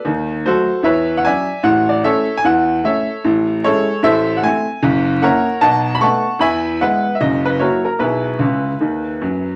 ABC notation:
X:1
M:4/4
L:1/16
Q:"Swing" 1/4=151
K:A
V:1 name="Grand piano"
z4 [FA^B]4 [=Bce]3 f [deg]4 | f2 d2 [Ace]3 g f4 [Ace]4 | [K:E] z4 [GAc]4 [A=ce]3 f g4 | z4 [^Acf]4 [df=a]3 b [fac']4 |
[egb]4 [Bf]3 e d2 B2 [F^Ac]2 A2 | [EGB]12- [EGB]2 z2 |]
V:2 name="Grand piano" clef=bass
[^D,,^D,]4 [F,A,]4 [E,,E,]4 [F,CE]4 | [A,,,A,,]4 [A,CE]4 [E,,E,]4 [A,CE]4 | [K:E] [A,,,A,,]4 [G,CE]4 [A,,,A,,]4 [A,=CE]4 | [F,,,F,,]4 [^A,CE]4 [B,,,B,,]4 [=A,B,D]4 |
[E,,E,]4 [G,B,E]4 [F,,,F,,]4 [F,^A,E]4 | [B,,,B,,]4 [C,,C,]4 [D,,D,]4 [F,,F,]4 |]